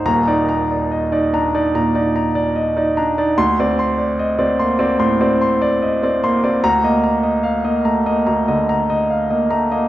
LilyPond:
<<
  \new Staff \with { instrumentName = "Grand piano" } { \time 4/4 \key ees \lydian \tempo 4 = 73 << { bes''8 r2. r8 | c'''8 r2. r8 | bes''8 r2. r8 | } \\ { r16 d''16 bes''16 d''16 ees''16 d''16 bes''16 d''16 bes''16 d''16 bes''16 d''16 ees''16 d''16 bes''16 d''16 | r16 d''16 c'''16 d''16 ees''16 d''16 c'''16 d''16 c'''16 d''16 c'''16 d''16 ees''16 d''16 c'''16 d''16 | r16 ees''16 bes''16 ees''16 f''16 ees''16 bes''16 ees''16 bes''16 ees''16 bes''16 ees''16 f''16 ees''16 bes''16 ees''16 | } >> }
  \new Staff \with { instrumentName = "Grand piano" } { \time 4/4 \key ees \lydian <ees,, ees,>16 ees'8 r8 ees'16 d'16 ees'16 bes,16 ees'8 r8 ees'16 d'16 ees'16 | d,16 c'8 r8 c'16 bes16 c'16 a,16 c'8 r8 c'16 bes16 c'16 | d,16 bes8 r8 bes16 a16 bes16 d,16 d8 r8 bes16 a16 bes16 | }
>>